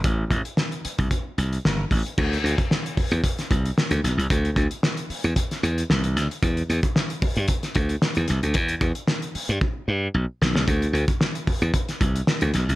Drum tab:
CC |----------------|x---------------|----------------|----------------|
HH |x-xx-xxxx-xx--ox|-xxx-xoxxxxx-xxx|xxxx-xoxxxxx-xxx|xxxx-xoxxxxx-xxx|
SD |----o-------o---|----o----o--o-o-|----o----o--o-o-|----o----o--o-o-|
BD |o-o----oo-----o-|o--o--o-o-o-----|o-o-----o-------|o--o--o-o-o-----|

CC |----------------|----------------|
HH |xxxx-xox--------|xxxx-xoxxxxx-xxx|
SD |----o---------oo|----o----o--o-o-|
BD |o-o-----o-------|o--o--o-o-o-----|